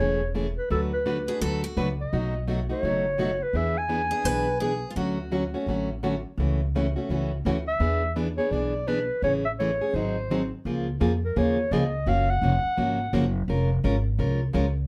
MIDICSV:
0, 0, Header, 1, 6, 480
1, 0, Start_track
1, 0, Key_signature, 3, "major"
1, 0, Tempo, 354820
1, 955, Time_signature, 4, 2, 24, 8
1, 14406, Key_signature, -5, "major"
1, 20116, End_track
2, 0, Start_track
2, 0, Title_t, "Clarinet"
2, 0, Program_c, 0, 71
2, 0, Note_on_c, 0, 73, 82
2, 428, Note_off_c, 0, 73, 0
2, 782, Note_on_c, 0, 71, 68
2, 950, Note_off_c, 0, 71, 0
2, 965, Note_on_c, 0, 69, 64
2, 1094, Note_off_c, 0, 69, 0
2, 1261, Note_on_c, 0, 71, 69
2, 1875, Note_off_c, 0, 71, 0
2, 2720, Note_on_c, 0, 75, 69
2, 3326, Note_off_c, 0, 75, 0
2, 3670, Note_on_c, 0, 73, 74
2, 4639, Note_on_c, 0, 71, 71
2, 4660, Note_off_c, 0, 73, 0
2, 4825, Note_on_c, 0, 76, 77
2, 4845, Note_off_c, 0, 71, 0
2, 5114, Note_on_c, 0, 80, 81
2, 5134, Note_off_c, 0, 76, 0
2, 6542, Note_off_c, 0, 80, 0
2, 10386, Note_on_c, 0, 76, 82
2, 11002, Note_off_c, 0, 76, 0
2, 11328, Note_on_c, 0, 73, 79
2, 11521, Note_on_c, 0, 74, 75
2, 11541, Note_off_c, 0, 73, 0
2, 12008, Note_on_c, 0, 71, 73
2, 12029, Note_off_c, 0, 74, 0
2, 12487, Note_off_c, 0, 71, 0
2, 12493, Note_on_c, 0, 73, 72
2, 12623, Note_off_c, 0, 73, 0
2, 12786, Note_on_c, 0, 76, 78
2, 12869, Note_off_c, 0, 76, 0
2, 12978, Note_on_c, 0, 73, 71
2, 13455, Note_on_c, 0, 72, 61
2, 13475, Note_off_c, 0, 73, 0
2, 14223, Note_off_c, 0, 72, 0
2, 15215, Note_on_c, 0, 70, 67
2, 15397, Note_on_c, 0, 73, 73
2, 15418, Note_off_c, 0, 70, 0
2, 15865, Note_on_c, 0, 75, 82
2, 15886, Note_off_c, 0, 73, 0
2, 16351, Note_on_c, 0, 77, 89
2, 16371, Note_off_c, 0, 75, 0
2, 16637, Note_on_c, 0, 78, 99
2, 16658, Note_off_c, 0, 77, 0
2, 18063, Note_off_c, 0, 78, 0
2, 20116, End_track
3, 0, Start_track
3, 0, Title_t, "Steel-string acoustic guitar"
3, 0, Program_c, 1, 25
3, 1734, Note_on_c, 1, 68, 73
3, 1908, Note_off_c, 1, 68, 0
3, 1914, Note_on_c, 1, 69, 91
3, 2210, Note_off_c, 1, 69, 0
3, 2215, Note_on_c, 1, 66, 72
3, 2522, Note_off_c, 1, 66, 0
3, 5557, Note_on_c, 1, 68, 68
3, 5751, Note_off_c, 1, 68, 0
3, 5751, Note_on_c, 1, 71, 79
3, 6222, Note_off_c, 1, 71, 0
3, 6227, Note_on_c, 1, 68, 67
3, 6635, Note_on_c, 1, 65, 43
3, 6650, Note_off_c, 1, 68, 0
3, 6706, Note_off_c, 1, 65, 0
3, 6712, Note_on_c, 1, 66, 61
3, 7621, Note_off_c, 1, 66, 0
3, 20116, End_track
4, 0, Start_track
4, 0, Title_t, "Steel-string acoustic guitar"
4, 0, Program_c, 2, 25
4, 0, Note_on_c, 2, 49, 51
4, 0, Note_on_c, 2, 52, 58
4, 0, Note_on_c, 2, 57, 55
4, 0, Note_on_c, 2, 61, 52
4, 6, Note_on_c, 2, 68, 59
4, 273, Note_off_c, 2, 49, 0
4, 273, Note_off_c, 2, 52, 0
4, 277, Note_off_c, 2, 57, 0
4, 279, Note_off_c, 2, 61, 0
4, 282, Note_off_c, 2, 68, 0
4, 466, Note_on_c, 2, 49, 69
4, 469, Note_on_c, 2, 52, 67
4, 474, Note_on_c, 2, 57, 71
4, 482, Note_on_c, 2, 61, 73
4, 482, Note_on_c, 2, 68, 82
4, 620, Note_off_c, 2, 49, 0
4, 621, Note_off_c, 2, 52, 0
4, 624, Note_off_c, 2, 57, 0
4, 628, Note_off_c, 2, 61, 0
4, 628, Note_off_c, 2, 68, 0
4, 951, Note_on_c, 2, 50, 52
4, 954, Note_on_c, 2, 57, 57
4, 954, Note_on_c, 2, 62, 56
4, 957, Note_on_c, 2, 54, 49
4, 965, Note_on_c, 2, 66, 57
4, 967, Note_on_c, 2, 71, 60
4, 1235, Note_off_c, 2, 50, 0
4, 1236, Note_off_c, 2, 57, 0
4, 1237, Note_off_c, 2, 62, 0
4, 1238, Note_off_c, 2, 54, 0
4, 1242, Note_off_c, 2, 66, 0
4, 1243, Note_off_c, 2, 71, 0
4, 1430, Note_on_c, 2, 54, 65
4, 1430, Note_on_c, 2, 57, 75
4, 1433, Note_on_c, 2, 50, 64
4, 1442, Note_on_c, 2, 62, 71
4, 1442, Note_on_c, 2, 66, 71
4, 1443, Note_on_c, 2, 71, 68
4, 1582, Note_off_c, 2, 54, 0
4, 1582, Note_off_c, 2, 57, 0
4, 1583, Note_off_c, 2, 50, 0
4, 1588, Note_off_c, 2, 62, 0
4, 1588, Note_off_c, 2, 66, 0
4, 1588, Note_off_c, 2, 71, 0
4, 1732, Note_on_c, 2, 71, 48
4, 1743, Note_on_c, 2, 66, 40
4, 1747, Note_on_c, 2, 62, 39
4, 1752, Note_on_c, 2, 57, 39
4, 1905, Note_off_c, 2, 57, 0
4, 1906, Note_off_c, 2, 62, 0
4, 1907, Note_off_c, 2, 66, 0
4, 1909, Note_on_c, 2, 50, 55
4, 1910, Note_off_c, 2, 71, 0
4, 1918, Note_on_c, 2, 54, 53
4, 1921, Note_on_c, 2, 57, 51
4, 1922, Note_on_c, 2, 62, 59
4, 1924, Note_on_c, 2, 66, 61
4, 1925, Note_on_c, 2, 71, 62
4, 2194, Note_off_c, 2, 50, 0
4, 2198, Note_off_c, 2, 54, 0
4, 2200, Note_off_c, 2, 57, 0
4, 2200, Note_off_c, 2, 62, 0
4, 2201, Note_off_c, 2, 66, 0
4, 2202, Note_off_c, 2, 71, 0
4, 2388, Note_on_c, 2, 50, 78
4, 2393, Note_on_c, 2, 54, 67
4, 2396, Note_on_c, 2, 57, 84
4, 2396, Note_on_c, 2, 66, 74
4, 2397, Note_on_c, 2, 62, 74
4, 2401, Note_on_c, 2, 71, 84
4, 2541, Note_off_c, 2, 50, 0
4, 2543, Note_off_c, 2, 54, 0
4, 2545, Note_off_c, 2, 57, 0
4, 2545, Note_off_c, 2, 62, 0
4, 2545, Note_off_c, 2, 66, 0
4, 2547, Note_off_c, 2, 71, 0
4, 2877, Note_on_c, 2, 47, 57
4, 2880, Note_on_c, 2, 54, 56
4, 2885, Note_on_c, 2, 57, 58
4, 2887, Note_on_c, 2, 66, 61
4, 2890, Note_on_c, 2, 63, 61
4, 3158, Note_off_c, 2, 47, 0
4, 3159, Note_off_c, 2, 54, 0
4, 3162, Note_off_c, 2, 57, 0
4, 3163, Note_off_c, 2, 66, 0
4, 3164, Note_off_c, 2, 63, 0
4, 3349, Note_on_c, 2, 47, 65
4, 3354, Note_on_c, 2, 54, 68
4, 3354, Note_on_c, 2, 57, 74
4, 3359, Note_on_c, 2, 63, 75
4, 3368, Note_on_c, 2, 66, 73
4, 3501, Note_off_c, 2, 47, 0
4, 3504, Note_off_c, 2, 54, 0
4, 3504, Note_off_c, 2, 57, 0
4, 3506, Note_off_c, 2, 63, 0
4, 3511, Note_off_c, 2, 66, 0
4, 3645, Note_on_c, 2, 66, 48
4, 3653, Note_on_c, 2, 63, 41
4, 3662, Note_on_c, 2, 57, 36
4, 3826, Note_off_c, 2, 66, 0
4, 3830, Note_off_c, 2, 63, 0
4, 3835, Note_off_c, 2, 57, 0
4, 3844, Note_on_c, 2, 47, 53
4, 3851, Note_on_c, 2, 54, 55
4, 3852, Note_on_c, 2, 57, 59
4, 3852, Note_on_c, 2, 63, 59
4, 3862, Note_on_c, 2, 66, 58
4, 4122, Note_off_c, 2, 47, 0
4, 4125, Note_off_c, 2, 54, 0
4, 4125, Note_off_c, 2, 57, 0
4, 4126, Note_off_c, 2, 63, 0
4, 4131, Note_off_c, 2, 66, 0
4, 4304, Note_on_c, 2, 47, 66
4, 4312, Note_on_c, 2, 54, 81
4, 4319, Note_on_c, 2, 63, 79
4, 4320, Note_on_c, 2, 57, 73
4, 4326, Note_on_c, 2, 66, 85
4, 4459, Note_off_c, 2, 47, 0
4, 4463, Note_off_c, 2, 54, 0
4, 4467, Note_off_c, 2, 57, 0
4, 4467, Note_off_c, 2, 63, 0
4, 4470, Note_off_c, 2, 66, 0
4, 4798, Note_on_c, 2, 52, 53
4, 4799, Note_on_c, 2, 59, 47
4, 4800, Note_on_c, 2, 62, 52
4, 4807, Note_on_c, 2, 68, 54
4, 5079, Note_off_c, 2, 52, 0
4, 5079, Note_off_c, 2, 59, 0
4, 5080, Note_off_c, 2, 62, 0
4, 5083, Note_off_c, 2, 68, 0
4, 5259, Note_on_c, 2, 52, 64
4, 5266, Note_on_c, 2, 59, 72
4, 5270, Note_on_c, 2, 62, 69
4, 5273, Note_on_c, 2, 68, 77
4, 5417, Note_off_c, 2, 52, 0
4, 5420, Note_off_c, 2, 59, 0
4, 5422, Note_off_c, 2, 62, 0
4, 5424, Note_off_c, 2, 68, 0
4, 5561, Note_on_c, 2, 68, 39
4, 5570, Note_on_c, 2, 62, 35
4, 5577, Note_on_c, 2, 59, 40
4, 5737, Note_off_c, 2, 59, 0
4, 5743, Note_off_c, 2, 62, 0
4, 5745, Note_off_c, 2, 68, 0
4, 5750, Note_on_c, 2, 52, 51
4, 5753, Note_on_c, 2, 59, 56
4, 5759, Note_on_c, 2, 62, 59
4, 5765, Note_on_c, 2, 68, 60
4, 6035, Note_off_c, 2, 52, 0
4, 6037, Note_off_c, 2, 59, 0
4, 6039, Note_off_c, 2, 62, 0
4, 6043, Note_off_c, 2, 68, 0
4, 6230, Note_on_c, 2, 52, 70
4, 6232, Note_on_c, 2, 59, 74
4, 6243, Note_on_c, 2, 62, 73
4, 6249, Note_on_c, 2, 68, 77
4, 6382, Note_off_c, 2, 52, 0
4, 6383, Note_off_c, 2, 59, 0
4, 6389, Note_off_c, 2, 62, 0
4, 6392, Note_off_c, 2, 68, 0
4, 6716, Note_on_c, 2, 50, 52
4, 6723, Note_on_c, 2, 54, 55
4, 6729, Note_on_c, 2, 61, 51
4, 6731, Note_on_c, 2, 57, 56
4, 6737, Note_on_c, 2, 66, 56
4, 6998, Note_off_c, 2, 50, 0
4, 7002, Note_off_c, 2, 54, 0
4, 7005, Note_off_c, 2, 61, 0
4, 7006, Note_off_c, 2, 57, 0
4, 7009, Note_off_c, 2, 66, 0
4, 7188, Note_on_c, 2, 50, 65
4, 7194, Note_on_c, 2, 54, 67
4, 7196, Note_on_c, 2, 57, 65
4, 7200, Note_on_c, 2, 61, 66
4, 7201, Note_on_c, 2, 66, 71
4, 7342, Note_off_c, 2, 50, 0
4, 7345, Note_off_c, 2, 54, 0
4, 7346, Note_off_c, 2, 57, 0
4, 7348, Note_off_c, 2, 61, 0
4, 7348, Note_off_c, 2, 66, 0
4, 7496, Note_on_c, 2, 66, 46
4, 7503, Note_on_c, 2, 61, 42
4, 7510, Note_on_c, 2, 57, 35
4, 7673, Note_off_c, 2, 66, 0
4, 7676, Note_off_c, 2, 61, 0
4, 7680, Note_off_c, 2, 57, 0
4, 7685, Note_on_c, 2, 50, 52
4, 7688, Note_on_c, 2, 54, 57
4, 7691, Note_on_c, 2, 61, 54
4, 7694, Note_on_c, 2, 57, 54
4, 7701, Note_on_c, 2, 66, 63
4, 7963, Note_off_c, 2, 50, 0
4, 7965, Note_off_c, 2, 54, 0
4, 7966, Note_off_c, 2, 61, 0
4, 7968, Note_off_c, 2, 57, 0
4, 7972, Note_off_c, 2, 66, 0
4, 8156, Note_on_c, 2, 54, 79
4, 8158, Note_on_c, 2, 50, 76
4, 8164, Note_on_c, 2, 57, 77
4, 8168, Note_on_c, 2, 61, 80
4, 8170, Note_on_c, 2, 66, 72
4, 8306, Note_off_c, 2, 54, 0
4, 8307, Note_off_c, 2, 50, 0
4, 8310, Note_off_c, 2, 57, 0
4, 8312, Note_off_c, 2, 61, 0
4, 8313, Note_off_c, 2, 66, 0
4, 8648, Note_on_c, 2, 49, 52
4, 8655, Note_on_c, 2, 52, 55
4, 8655, Note_on_c, 2, 57, 54
4, 8659, Note_on_c, 2, 66, 54
4, 8661, Note_on_c, 2, 61, 56
4, 8925, Note_off_c, 2, 49, 0
4, 8929, Note_off_c, 2, 52, 0
4, 8929, Note_off_c, 2, 57, 0
4, 8931, Note_off_c, 2, 66, 0
4, 8932, Note_off_c, 2, 61, 0
4, 9135, Note_on_c, 2, 49, 70
4, 9142, Note_on_c, 2, 52, 73
4, 9143, Note_on_c, 2, 61, 81
4, 9145, Note_on_c, 2, 57, 74
4, 9149, Note_on_c, 2, 66, 75
4, 9276, Note_off_c, 2, 49, 0
4, 9280, Note_off_c, 2, 52, 0
4, 9280, Note_off_c, 2, 61, 0
4, 9281, Note_off_c, 2, 57, 0
4, 9283, Note_off_c, 2, 66, 0
4, 9416, Note_on_c, 2, 66, 47
4, 9426, Note_on_c, 2, 61, 40
4, 9440, Note_on_c, 2, 57, 39
4, 9594, Note_off_c, 2, 57, 0
4, 9594, Note_off_c, 2, 66, 0
4, 9599, Note_off_c, 2, 61, 0
4, 9606, Note_on_c, 2, 49, 57
4, 9609, Note_on_c, 2, 52, 58
4, 9610, Note_on_c, 2, 57, 57
4, 9622, Note_on_c, 2, 61, 60
4, 9623, Note_on_c, 2, 66, 62
4, 9885, Note_off_c, 2, 49, 0
4, 9887, Note_off_c, 2, 52, 0
4, 9887, Note_off_c, 2, 57, 0
4, 9893, Note_off_c, 2, 61, 0
4, 9894, Note_off_c, 2, 66, 0
4, 10086, Note_on_c, 2, 49, 72
4, 10093, Note_on_c, 2, 52, 78
4, 10094, Note_on_c, 2, 61, 87
4, 10098, Note_on_c, 2, 57, 80
4, 10100, Note_on_c, 2, 66, 82
4, 10233, Note_off_c, 2, 49, 0
4, 10236, Note_off_c, 2, 52, 0
4, 10237, Note_off_c, 2, 61, 0
4, 10239, Note_off_c, 2, 57, 0
4, 10240, Note_off_c, 2, 66, 0
4, 10551, Note_on_c, 2, 52, 51
4, 10558, Note_on_c, 2, 59, 61
4, 10567, Note_on_c, 2, 62, 60
4, 10570, Note_on_c, 2, 68, 68
4, 10839, Note_off_c, 2, 52, 0
4, 10842, Note_off_c, 2, 59, 0
4, 10847, Note_off_c, 2, 62, 0
4, 10848, Note_off_c, 2, 68, 0
4, 11038, Note_on_c, 2, 59, 70
4, 11040, Note_on_c, 2, 52, 75
4, 11045, Note_on_c, 2, 62, 78
4, 11050, Note_on_c, 2, 68, 70
4, 11189, Note_off_c, 2, 59, 0
4, 11191, Note_off_c, 2, 52, 0
4, 11193, Note_off_c, 2, 62, 0
4, 11196, Note_off_c, 2, 68, 0
4, 11336, Note_on_c, 2, 68, 43
4, 11353, Note_on_c, 2, 62, 43
4, 11358, Note_on_c, 2, 59, 39
4, 11516, Note_off_c, 2, 59, 0
4, 11516, Note_off_c, 2, 62, 0
4, 11516, Note_off_c, 2, 68, 0
4, 11532, Note_on_c, 2, 52, 59
4, 11532, Note_on_c, 2, 59, 50
4, 11533, Note_on_c, 2, 62, 57
4, 11542, Note_on_c, 2, 68, 65
4, 11810, Note_off_c, 2, 52, 0
4, 11810, Note_off_c, 2, 59, 0
4, 11810, Note_off_c, 2, 62, 0
4, 11815, Note_off_c, 2, 68, 0
4, 12004, Note_on_c, 2, 52, 72
4, 12009, Note_on_c, 2, 59, 73
4, 12012, Note_on_c, 2, 62, 79
4, 12019, Note_on_c, 2, 68, 78
4, 12153, Note_off_c, 2, 52, 0
4, 12156, Note_off_c, 2, 59, 0
4, 12157, Note_off_c, 2, 62, 0
4, 12161, Note_off_c, 2, 68, 0
4, 12495, Note_on_c, 2, 52, 58
4, 12496, Note_on_c, 2, 49, 53
4, 12498, Note_on_c, 2, 57, 58
4, 12500, Note_on_c, 2, 61, 60
4, 12505, Note_on_c, 2, 68, 52
4, 12772, Note_off_c, 2, 49, 0
4, 12772, Note_off_c, 2, 52, 0
4, 12773, Note_off_c, 2, 57, 0
4, 12774, Note_off_c, 2, 61, 0
4, 12777, Note_off_c, 2, 68, 0
4, 12983, Note_on_c, 2, 49, 64
4, 12988, Note_on_c, 2, 52, 74
4, 12992, Note_on_c, 2, 61, 70
4, 12993, Note_on_c, 2, 57, 74
4, 12994, Note_on_c, 2, 68, 83
4, 13123, Note_off_c, 2, 49, 0
4, 13126, Note_off_c, 2, 52, 0
4, 13128, Note_off_c, 2, 57, 0
4, 13128, Note_off_c, 2, 61, 0
4, 13129, Note_off_c, 2, 68, 0
4, 13277, Note_on_c, 2, 68, 44
4, 13292, Note_on_c, 2, 61, 42
4, 13304, Note_on_c, 2, 57, 34
4, 13447, Note_off_c, 2, 68, 0
4, 13455, Note_off_c, 2, 61, 0
4, 13460, Note_on_c, 2, 51, 54
4, 13461, Note_off_c, 2, 57, 0
4, 13468, Note_on_c, 2, 54, 55
4, 13471, Note_on_c, 2, 60, 49
4, 13474, Note_on_c, 2, 63, 59
4, 13475, Note_on_c, 2, 68, 57
4, 13735, Note_off_c, 2, 51, 0
4, 13739, Note_off_c, 2, 54, 0
4, 13740, Note_off_c, 2, 60, 0
4, 13742, Note_off_c, 2, 63, 0
4, 13743, Note_off_c, 2, 68, 0
4, 13941, Note_on_c, 2, 51, 76
4, 13951, Note_on_c, 2, 54, 71
4, 13951, Note_on_c, 2, 60, 87
4, 13954, Note_on_c, 2, 63, 74
4, 13955, Note_on_c, 2, 68, 79
4, 14083, Note_off_c, 2, 51, 0
4, 14088, Note_off_c, 2, 54, 0
4, 14088, Note_off_c, 2, 60, 0
4, 14089, Note_off_c, 2, 63, 0
4, 14090, Note_off_c, 2, 68, 0
4, 14421, Note_on_c, 2, 53, 55
4, 14425, Note_on_c, 2, 49, 57
4, 14429, Note_on_c, 2, 58, 59
4, 14430, Note_on_c, 2, 68, 63
4, 14434, Note_on_c, 2, 65, 70
4, 14695, Note_off_c, 2, 53, 0
4, 14697, Note_off_c, 2, 49, 0
4, 14699, Note_off_c, 2, 58, 0
4, 14700, Note_off_c, 2, 68, 0
4, 14702, Note_off_c, 2, 65, 0
4, 14885, Note_on_c, 2, 49, 68
4, 14890, Note_on_c, 2, 53, 70
4, 14893, Note_on_c, 2, 58, 76
4, 14894, Note_on_c, 2, 65, 78
4, 14897, Note_on_c, 2, 68, 85
4, 15034, Note_off_c, 2, 49, 0
4, 15037, Note_off_c, 2, 53, 0
4, 15038, Note_off_c, 2, 58, 0
4, 15039, Note_off_c, 2, 65, 0
4, 15041, Note_off_c, 2, 68, 0
4, 15369, Note_on_c, 2, 49, 54
4, 15379, Note_on_c, 2, 53, 65
4, 15380, Note_on_c, 2, 58, 62
4, 15380, Note_on_c, 2, 68, 73
4, 15383, Note_on_c, 2, 65, 70
4, 15649, Note_off_c, 2, 49, 0
4, 15654, Note_off_c, 2, 53, 0
4, 15654, Note_off_c, 2, 58, 0
4, 15654, Note_off_c, 2, 68, 0
4, 15656, Note_off_c, 2, 65, 0
4, 15857, Note_on_c, 2, 49, 79
4, 15864, Note_on_c, 2, 58, 83
4, 15866, Note_on_c, 2, 65, 94
4, 15867, Note_on_c, 2, 53, 91
4, 15869, Note_on_c, 2, 68, 81
4, 16000, Note_off_c, 2, 49, 0
4, 16003, Note_off_c, 2, 58, 0
4, 16004, Note_off_c, 2, 65, 0
4, 16005, Note_off_c, 2, 53, 0
4, 16006, Note_off_c, 2, 68, 0
4, 16325, Note_on_c, 2, 49, 59
4, 16329, Note_on_c, 2, 58, 61
4, 16331, Note_on_c, 2, 53, 63
4, 16332, Note_on_c, 2, 66, 63
4, 16333, Note_on_c, 2, 61, 62
4, 16606, Note_off_c, 2, 49, 0
4, 16608, Note_off_c, 2, 58, 0
4, 16609, Note_off_c, 2, 53, 0
4, 16609, Note_off_c, 2, 66, 0
4, 16610, Note_off_c, 2, 61, 0
4, 16812, Note_on_c, 2, 49, 75
4, 16817, Note_on_c, 2, 53, 76
4, 16820, Note_on_c, 2, 58, 77
4, 16821, Note_on_c, 2, 61, 87
4, 16830, Note_on_c, 2, 66, 82
4, 16956, Note_off_c, 2, 49, 0
4, 16959, Note_off_c, 2, 53, 0
4, 16960, Note_off_c, 2, 58, 0
4, 16961, Note_off_c, 2, 61, 0
4, 16965, Note_off_c, 2, 66, 0
4, 17278, Note_on_c, 2, 53, 66
4, 17279, Note_on_c, 2, 49, 64
4, 17281, Note_on_c, 2, 58, 61
4, 17288, Note_on_c, 2, 61, 68
4, 17288, Note_on_c, 2, 66, 70
4, 17561, Note_off_c, 2, 53, 0
4, 17562, Note_off_c, 2, 49, 0
4, 17562, Note_off_c, 2, 58, 0
4, 17566, Note_off_c, 2, 61, 0
4, 17566, Note_off_c, 2, 66, 0
4, 17764, Note_on_c, 2, 49, 81
4, 17767, Note_on_c, 2, 53, 87
4, 17772, Note_on_c, 2, 61, 94
4, 17774, Note_on_c, 2, 58, 98
4, 17782, Note_on_c, 2, 66, 93
4, 17911, Note_off_c, 2, 49, 0
4, 17912, Note_off_c, 2, 53, 0
4, 17915, Note_off_c, 2, 61, 0
4, 17916, Note_off_c, 2, 58, 0
4, 17920, Note_off_c, 2, 66, 0
4, 18249, Note_on_c, 2, 53, 60
4, 18254, Note_on_c, 2, 56, 58
4, 18254, Note_on_c, 2, 61, 60
4, 18260, Note_on_c, 2, 65, 61
4, 18260, Note_on_c, 2, 70, 67
4, 18525, Note_off_c, 2, 53, 0
4, 18527, Note_off_c, 2, 61, 0
4, 18528, Note_off_c, 2, 56, 0
4, 18530, Note_off_c, 2, 65, 0
4, 18531, Note_off_c, 2, 70, 0
4, 18717, Note_on_c, 2, 53, 79
4, 18725, Note_on_c, 2, 56, 72
4, 18728, Note_on_c, 2, 61, 85
4, 18733, Note_on_c, 2, 65, 79
4, 18733, Note_on_c, 2, 70, 88
4, 18866, Note_off_c, 2, 53, 0
4, 18870, Note_off_c, 2, 56, 0
4, 18871, Note_off_c, 2, 61, 0
4, 18874, Note_off_c, 2, 65, 0
4, 18874, Note_off_c, 2, 70, 0
4, 19187, Note_on_c, 2, 53, 59
4, 19195, Note_on_c, 2, 61, 67
4, 19198, Note_on_c, 2, 56, 64
4, 19205, Note_on_c, 2, 65, 69
4, 19206, Note_on_c, 2, 70, 69
4, 19472, Note_off_c, 2, 53, 0
4, 19476, Note_off_c, 2, 61, 0
4, 19478, Note_off_c, 2, 56, 0
4, 19481, Note_off_c, 2, 65, 0
4, 19482, Note_off_c, 2, 70, 0
4, 19660, Note_on_c, 2, 53, 87
4, 19665, Note_on_c, 2, 56, 85
4, 19676, Note_on_c, 2, 61, 83
4, 19678, Note_on_c, 2, 65, 86
4, 19679, Note_on_c, 2, 70, 93
4, 19816, Note_off_c, 2, 53, 0
4, 19818, Note_off_c, 2, 56, 0
4, 19824, Note_off_c, 2, 61, 0
4, 19825, Note_off_c, 2, 65, 0
4, 19825, Note_off_c, 2, 70, 0
4, 20116, End_track
5, 0, Start_track
5, 0, Title_t, "Upright bass"
5, 0, Program_c, 3, 32
5, 0, Note_on_c, 3, 28, 64
5, 761, Note_off_c, 3, 28, 0
5, 953, Note_on_c, 3, 38, 77
5, 1722, Note_off_c, 3, 38, 0
5, 1909, Note_on_c, 3, 38, 65
5, 2320, Note_off_c, 3, 38, 0
5, 2388, Note_on_c, 3, 37, 66
5, 2799, Note_off_c, 3, 37, 0
5, 2878, Note_on_c, 3, 35, 75
5, 3645, Note_off_c, 3, 35, 0
5, 3829, Note_on_c, 3, 30, 70
5, 4600, Note_off_c, 3, 30, 0
5, 4780, Note_on_c, 3, 40, 71
5, 5555, Note_off_c, 3, 40, 0
5, 5742, Note_on_c, 3, 35, 62
5, 6516, Note_off_c, 3, 35, 0
5, 6706, Note_on_c, 3, 38, 67
5, 7479, Note_off_c, 3, 38, 0
5, 7665, Note_on_c, 3, 33, 63
5, 8439, Note_off_c, 3, 33, 0
5, 8624, Note_on_c, 3, 37, 79
5, 9399, Note_off_c, 3, 37, 0
5, 9595, Note_on_c, 3, 37, 64
5, 10006, Note_off_c, 3, 37, 0
5, 10078, Note_on_c, 3, 38, 72
5, 10488, Note_off_c, 3, 38, 0
5, 10551, Note_on_c, 3, 40, 78
5, 11325, Note_off_c, 3, 40, 0
5, 11509, Note_on_c, 3, 35, 66
5, 12284, Note_off_c, 3, 35, 0
5, 12477, Note_on_c, 3, 33, 75
5, 13249, Note_off_c, 3, 33, 0
5, 13441, Note_on_c, 3, 32, 73
5, 14211, Note_off_c, 3, 32, 0
5, 14409, Note_on_c, 3, 37, 73
5, 14873, Note_off_c, 3, 37, 0
5, 14891, Note_on_c, 3, 41, 79
5, 15353, Note_off_c, 3, 41, 0
5, 15372, Note_on_c, 3, 39, 82
5, 15833, Note_off_c, 3, 39, 0
5, 15845, Note_on_c, 3, 37, 83
5, 16310, Note_off_c, 3, 37, 0
5, 16319, Note_on_c, 3, 30, 79
5, 16786, Note_off_c, 3, 30, 0
5, 16797, Note_on_c, 3, 29, 83
5, 17071, Note_off_c, 3, 29, 0
5, 17286, Note_on_c, 3, 32, 79
5, 17748, Note_off_c, 3, 32, 0
5, 17762, Note_on_c, 3, 30, 86
5, 18225, Note_off_c, 3, 30, 0
5, 18234, Note_on_c, 3, 29, 80
5, 18701, Note_off_c, 3, 29, 0
5, 18722, Note_on_c, 3, 32, 89
5, 19184, Note_off_c, 3, 32, 0
5, 19193, Note_on_c, 3, 36, 81
5, 19658, Note_off_c, 3, 36, 0
5, 19673, Note_on_c, 3, 37, 83
5, 20116, Note_off_c, 3, 37, 0
5, 20116, End_track
6, 0, Start_track
6, 0, Title_t, "Muted upright bass strokes"
6, 17102, Note_on_c, 9, 29, 37
6, 17237, Note_off_c, 9, 29, 0
6, 20116, End_track
0, 0, End_of_file